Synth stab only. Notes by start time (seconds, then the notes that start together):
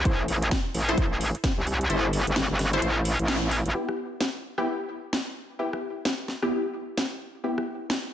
0.05 E4 A4 C5
0.88 E4 A4 C5
1.90 E4 A4 C5
2.73 E4 A4 C5
3.74 B3 E4 G4
4.58 B3 E4 G4
5.59 B3 E4 G4
6.42 B3 E4 G4
7.44 B3 E4 G4